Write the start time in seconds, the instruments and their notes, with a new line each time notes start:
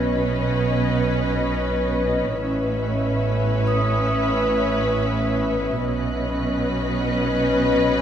Already playing: double bass section B1, cello section B2, viola section C#4, violin section B4 D#5, ambient pad B4 C#5 D#5
2.36 double bass section A1, cello section A2, viola section C#4, violin section B4 E5, ambient pad B4 C#5 E5
3.67 vibraphone D#6
5.80 double bass section B1, cello section B2, viola section C#4, ambient pad B4 C#5 D#5, violin section B4 D#5 B5 F#6